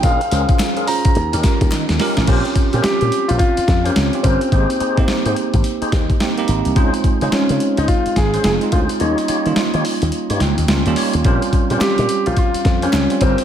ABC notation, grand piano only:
X:1
M:4/4
L:1/16
Q:"Swing 16ths" 1/4=107
K:Bbdor
V:1 name="Grand piano"
f6 b6 z4 | z4 G3 F F3 D3 C2- | C12- C2 z2 | z4 D3 E F2 A2 A2 F2 |
E12 z4 | z4 G3 F F3 D3 C2 |]